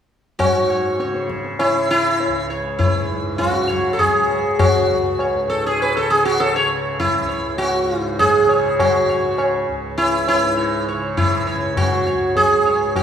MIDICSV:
0, 0, Header, 1, 4, 480
1, 0, Start_track
1, 0, Tempo, 598205
1, 319, Time_signature, 7, 2, 24, 8
1, 10454, End_track
2, 0, Start_track
2, 0, Title_t, "Sitar"
2, 0, Program_c, 0, 104
2, 312, Note_on_c, 0, 66, 87
2, 559, Note_on_c, 0, 73, 32
2, 783, Note_off_c, 0, 73, 0
2, 803, Note_on_c, 0, 73, 34
2, 1006, Note_off_c, 0, 66, 0
2, 1026, Note_off_c, 0, 73, 0
2, 1280, Note_on_c, 0, 64, 79
2, 1519, Note_off_c, 0, 64, 0
2, 1529, Note_on_c, 0, 64, 87
2, 1975, Note_off_c, 0, 64, 0
2, 2006, Note_on_c, 0, 73, 33
2, 2229, Note_off_c, 0, 73, 0
2, 2236, Note_on_c, 0, 64, 62
2, 2711, Note_off_c, 0, 64, 0
2, 2714, Note_on_c, 0, 66, 65
2, 2963, Note_on_c, 0, 73, 35
2, 3152, Note_off_c, 0, 73, 0
2, 3155, Note_on_c, 0, 69, 57
2, 3158, Note_off_c, 0, 66, 0
2, 3201, Note_on_c, 0, 68, 69
2, 3209, Note_off_c, 0, 69, 0
2, 3681, Note_off_c, 0, 68, 0
2, 3685, Note_on_c, 0, 66, 74
2, 4172, Note_on_c, 0, 73, 33
2, 4394, Note_off_c, 0, 73, 0
2, 4410, Note_on_c, 0, 69, 73
2, 4429, Note_off_c, 0, 66, 0
2, 4533, Note_off_c, 0, 69, 0
2, 4545, Note_on_c, 0, 68, 74
2, 4660, Note_off_c, 0, 68, 0
2, 4669, Note_on_c, 0, 71, 79
2, 4782, Note_off_c, 0, 71, 0
2, 4788, Note_on_c, 0, 69, 77
2, 4897, Note_on_c, 0, 68, 79
2, 4902, Note_off_c, 0, 69, 0
2, 5014, Note_off_c, 0, 68, 0
2, 5017, Note_on_c, 0, 66, 81
2, 5135, Note_on_c, 0, 69, 79
2, 5136, Note_off_c, 0, 66, 0
2, 5255, Note_off_c, 0, 69, 0
2, 5262, Note_on_c, 0, 73, 76
2, 5367, Note_off_c, 0, 73, 0
2, 5613, Note_on_c, 0, 64, 66
2, 5846, Note_on_c, 0, 73, 35
2, 6070, Note_off_c, 0, 73, 0
2, 6080, Note_off_c, 0, 64, 0
2, 6083, Note_on_c, 0, 66, 78
2, 6412, Note_off_c, 0, 66, 0
2, 6412, Note_on_c, 0, 64, 78
2, 6571, Note_off_c, 0, 64, 0
2, 6574, Note_on_c, 0, 68, 94
2, 6825, Note_on_c, 0, 73, 36
2, 7040, Note_off_c, 0, 73, 0
2, 7056, Note_off_c, 0, 68, 0
2, 7060, Note_on_c, 0, 66, 77
2, 7295, Note_on_c, 0, 73, 35
2, 7514, Note_off_c, 0, 73, 0
2, 7531, Note_on_c, 0, 73, 36
2, 7740, Note_off_c, 0, 66, 0
2, 7752, Note_off_c, 0, 73, 0
2, 8005, Note_on_c, 0, 64, 89
2, 8242, Note_off_c, 0, 64, 0
2, 8252, Note_on_c, 0, 64, 86
2, 8496, Note_on_c, 0, 73, 32
2, 8695, Note_off_c, 0, 64, 0
2, 8713, Note_off_c, 0, 73, 0
2, 8733, Note_on_c, 0, 73, 35
2, 8951, Note_off_c, 0, 73, 0
2, 8965, Note_on_c, 0, 64, 68
2, 9203, Note_on_c, 0, 73, 33
2, 9410, Note_off_c, 0, 64, 0
2, 9425, Note_off_c, 0, 73, 0
2, 9446, Note_on_c, 0, 66, 76
2, 9680, Note_on_c, 0, 73, 36
2, 9902, Note_off_c, 0, 73, 0
2, 9919, Note_off_c, 0, 66, 0
2, 9922, Note_on_c, 0, 68, 79
2, 10159, Note_on_c, 0, 73, 33
2, 10380, Note_off_c, 0, 73, 0
2, 10397, Note_off_c, 0, 68, 0
2, 10401, Note_on_c, 0, 66, 72
2, 10454, Note_off_c, 0, 66, 0
2, 10454, End_track
3, 0, Start_track
3, 0, Title_t, "Tanpura"
3, 0, Program_c, 1, 104
3, 328, Note_on_c, 1, 44, 53
3, 827, Note_on_c, 1, 49, 58
3, 1333, Note_off_c, 1, 49, 0
3, 1333, Note_on_c, 1, 49, 54
3, 1824, Note_on_c, 1, 37, 55
3, 2317, Note_off_c, 1, 44, 0
3, 2321, Note_on_c, 1, 44, 51
3, 2821, Note_off_c, 1, 49, 0
3, 2821, Note_on_c, 1, 49, 49
3, 3317, Note_off_c, 1, 49, 0
3, 3317, Note_on_c, 1, 49, 57
3, 3808, Note_off_c, 1, 37, 0
3, 3811, Note_on_c, 1, 37, 51
3, 4295, Note_off_c, 1, 44, 0
3, 4298, Note_on_c, 1, 44, 52
3, 4798, Note_off_c, 1, 49, 0
3, 4798, Note_on_c, 1, 49, 53
3, 5290, Note_off_c, 1, 49, 0
3, 5290, Note_on_c, 1, 49, 52
3, 5788, Note_off_c, 1, 37, 0
3, 5791, Note_on_c, 1, 37, 54
3, 6280, Note_off_c, 1, 44, 0
3, 6283, Note_on_c, 1, 44, 58
3, 6779, Note_off_c, 1, 49, 0
3, 6779, Note_on_c, 1, 49, 56
3, 7274, Note_off_c, 1, 49, 0
3, 7274, Note_on_c, 1, 49, 57
3, 7766, Note_off_c, 1, 37, 0
3, 7770, Note_on_c, 1, 37, 56
3, 8258, Note_off_c, 1, 44, 0
3, 8262, Note_on_c, 1, 44, 58
3, 8768, Note_off_c, 1, 49, 0
3, 8768, Note_on_c, 1, 49, 46
3, 9254, Note_off_c, 1, 49, 0
3, 9254, Note_on_c, 1, 49, 51
3, 9736, Note_off_c, 1, 37, 0
3, 9739, Note_on_c, 1, 37, 53
3, 10242, Note_off_c, 1, 44, 0
3, 10245, Note_on_c, 1, 44, 50
3, 10454, Note_off_c, 1, 37, 0
3, 10454, Note_off_c, 1, 44, 0
3, 10454, Note_off_c, 1, 49, 0
3, 10454, End_track
4, 0, Start_track
4, 0, Title_t, "Tabla"
4, 319, Note_on_c, 9, 60, 87
4, 319, Note_on_c, 9, 64, 82
4, 399, Note_off_c, 9, 60, 0
4, 399, Note_off_c, 9, 64, 0
4, 799, Note_on_c, 9, 62, 67
4, 879, Note_off_c, 9, 62, 0
4, 917, Note_on_c, 9, 62, 55
4, 998, Note_off_c, 9, 62, 0
4, 1039, Note_on_c, 9, 37, 51
4, 1119, Note_off_c, 9, 37, 0
4, 1159, Note_on_c, 9, 62, 46
4, 1239, Note_off_c, 9, 62, 0
4, 1278, Note_on_c, 9, 60, 73
4, 1358, Note_off_c, 9, 60, 0
4, 1767, Note_on_c, 9, 63, 63
4, 1847, Note_off_c, 9, 63, 0
4, 2244, Note_on_c, 9, 63, 66
4, 2244, Note_on_c, 9, 64, 64
4, 2324, Note_off_c, 9, 63, 0
4, 2324, Note_off_c, 9, 64, 0
4, 2725, Note_on_c, 9, 60, 69
4, 2725, Note_on_c, 9, 64, 59
4, 2805, Note_off_c, 9, 60, 0
4, 2805, Note_off_c, 9, 64, 0
4, 2971, Note_on_c, 9, 64, 52
4, 3051, Note_off_c, 9, 64, 0
4, 3211, Note_on_c, 9, 63, 67
4, 3211, Note_on_c, 9, 64, 62
4, 3291, Note_off_c, 9, 63, 0
4, 3291, Note_off_c, 9, 64, 0
4, 3448, Note_on_c, 9, 60, 56
4, 3529, Note_off_c, 9, 60, 0
4, 3687, Note_on_c, 9, 60, 85
4, 3687, Note_on_c, 9, 64, 80
4, 3767, Note_off_c, 9, 60, 0
4, 3767, Note_off_c, 9, 64, 0
4, 4166, Note_on_c, 9, 60, 65
4, 4246, Note_off_c, 9, 60, 0
4, 4652, Note_on_c, 9, 60, 67
4, 4732, Note_off_c, 9, 60, 0
4, 5137, Note_on_c, 9, 63, 66
4, 5218, Note_off_c, 9, 63, 0
4, 5613, Note_on_c, 9, 63, 67
4, 5613, Note_on_c, 9, 64, 60
4, 5694, Note_off_c, 9, 63, 0
4, 5694, Note_off_c, 9, 64, 0
4, 6092, Note_on_c, 9, 60, 73
4, 6173, Note_off_c, 9, 60, 0
4, 6574, Note_on_c, 9, 63, 66
4, 6574, Note_on_c, 9, 64, 61
4, 6654, Note_off_c, 9, 63, 0
4, 6654, Note_off_c, 9, 64, 0
4, 6813, Note_on_c, 9, 60, 55
4, 6894, Note_off_c, 9, 60, 0
4, 7057, Note_on_c, 9, 60, 93
4, 7057, Note_on_c, 9, 64, 82
4, 7137, Note_off_c, 9, 60, 0
4, 7137, Note_off_c, 9, 64, 0
4, 7529, Note_on_c, 9, 60, 76
4, 7609, Note_off_c, 9, 60, 0
4, 8004, Note_on_c, 9, 60, 71
4, 8085, Note_off_c, 9, 60, 0
4, 8246, Note_on_c, 9, 60, 55
4, 8327, Note_off_c, 9, 60, 0
4, 8481, Note_on_c, 9, 63, 63
4, 8562, Note_off_c, 9, 63, 0
4, 8968, Note_on_c, 9, 63, 67
4, 8968, Note_on_c, 9, 64, 60
4, 9048, Note_off_c, 9, 63, 0
4, 9048, Note_off_c, 9, 64, 0
4, 9442, Note_on_c, 9, 60, 69
4, 9442, Note_on_c, 9, 64, 59
4, 9522, Note_off_c, 9, 60, 0
4, 9522, Note_off_c, 9, 64, 0
4, 9680, Note_on_c, 9, 62, 58
4, 9760, Note_off_c, 9, 62, 0
4, 9915, Note_on_c, 9, 63, 66
4, 9915, Note_on_c, 9, 64, 62
4, 9995, Note_off_c, 9, 63, 0
4, 9995, Note_off_c, 9, 64, 0
4, 10157, Note_on_c, 9, 60, 57
4, 10237, Note_off_c, 9, 60, 0
4, 10396, Note_on_c, 9, 60, 88
4, 10396, Note_on_c, 9, 64, 81
4, 10454, Note_off_c, 9, 60, 0
4, 10454, Note_off_c, 9, 64, 0
4, 10454, End_track
0, 0, End_of_file